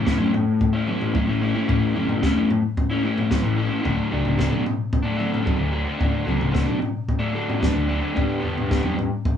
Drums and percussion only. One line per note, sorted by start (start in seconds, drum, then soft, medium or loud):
0.07 kick medium
0.07 snare medium
0.21 mid tom medium
0.34 floor tom medium
0.61 kick loud
0.61 floor tom medium
0.88 mid tom medium
1.01 floor tom medium
1.15 kick loud
1.15 mid tom medium
1.69 kick loud
1.69 floor tom medium
1.96 mid tom medium
2.09 floor tom medium
2.23 kick medium
2.23 snare medium
2.37 mid tom medium
2.50 floor tom medium
2.77 kick loud
2.77 floor tom medium
3.18 floor tom medium
3.31 kick medium
3.31 snare medium
3.31 mid tom medium
3.85 kick medium
3.85 floor tom medium
4.25 floor tom medium
4.39 kick medium
4.39 snare medium
4.53 mid tom medium
4.66 floor tom medium
4.93 kick loud
4.93 floor tom medium
5.20 mid tom medium
5.34 floor tom medium
5.47 kick loud
5.47 mid tom medium
6.01 kick medium
6.01 floor tom medium
6.28 mid tom medium
6.41 floor tom medium
6.55 kick loud
6.55 snare medium
6.69 mid tom medium
6.82 floor tom medium
7.09 kick medium
7.09 floor tom medium
7.50 floor tom medium
7.63 kick loud
7.63 snare medium
7.63 mid tom medium
8.17 kick medium
8.17 floor tom medium
8.58 floor tom medium
8.71 kick loud
8.71 snare medium
8.85 mid tom medium
8.99 floor tom medium
9.25 kick loud
9.25 floor tom medium